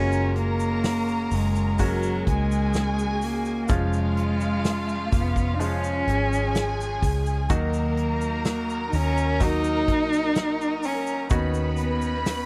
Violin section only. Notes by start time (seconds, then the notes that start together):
Already playing: A#4 A#5
2.27 G#4 G#5
3.69 F4 F5
6.07 G#4 G#5
7.50 A#4 A#5
11.31 B4 B5